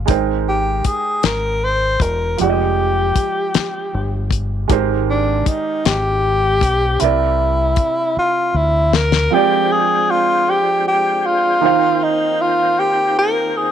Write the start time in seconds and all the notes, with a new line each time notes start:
0.06 G#1 G#3 D#4 G5, kick, closed hi-hat
0.10 A#4 C5
0.49 G4
0.85 G#4, kick, closed hi-hat
1.23 G#1 A#4, snare, closed hi-hat
1.65 C5
2.00 E1 A#4, kick, closed hi-hat
2.37 F1 F3 F4 G4, closed hi-hat
2.42 G#3 G4 D5
2.49 D#5
3.16 muted fingered electric bass stroke, kick, closed hi-hat
3.54 muted fingered electric bass stroke, snare, closed hi-hat
3.94 G1
4.31 kick, closed hi-hat
4.68 G#1 D#3 G#3 G4 A#4, kick, closed hi-hat
4.73 C5
5.10 D4
5.46 D#4, muted fingered electric bass stroke, kick, closed hi-hat
5.85 G#1 G4, snare, closed hi-hat
6.61 B1, kick, closed hi-hat
6.99 C2 C3 C4 E4 A#4 E5, closed hi-hat
7.04 D5
7.76 kick, closed hi-hat
8.17 F4, muted fingered electric bass stroke
8.54 D2 E4
8.93 A#4, snare
9.12 snare
9.30 F3 G#3 C4 D4 G4 G5
9.35 D5
9.72 G#4
10.11 F4
10.50 G4
10.88 G4
11.26 F4
11.61 D#3 A#3 C4 D#4 F4 C5 G5
11.66 F5
12.03 D#4
12.41 F4
12.79 G4
13.19 A#4
13.57 G#4